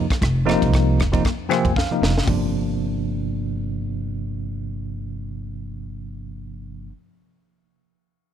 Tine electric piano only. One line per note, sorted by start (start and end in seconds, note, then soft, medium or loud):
0.45 1.01 C3 medium
0.45 1.01 F3 medium
0.45 1.01 A#3 medium
0.45 1.01 D#4 medium
1.12 1.22 C3 medium
1.12 1.23 F3 medium
1.12 1.23 A#3 medium
1.12 1.23 D#4 medium
1.24 1.31 A#3 soft
1.24 1.31 D4 soft
1.49 1.72 C3 medium
1.49 1.72 F3 medium
1.49 1.72 A#3 medium
1.49 1.72 C4 loud
1.49 1.74 G#5 medium
1.76 1.83 A#3 soft
1.76 1.83 C4 soft
1.76 2.24 F5 medium
1.91 2.12 C3 medium
1.91 2.12 F3 medium
1.91 2.12 A#3 medium
1.91 2.12 D#4 medium
2.16 2.21 A#3 soft
2.16 2.22 D#4 soft
2.25 6.86 C3 medium
2.25 6.88 F3 medium
2.25 6.90 A#3 soft
2.29 6.91 D4 medium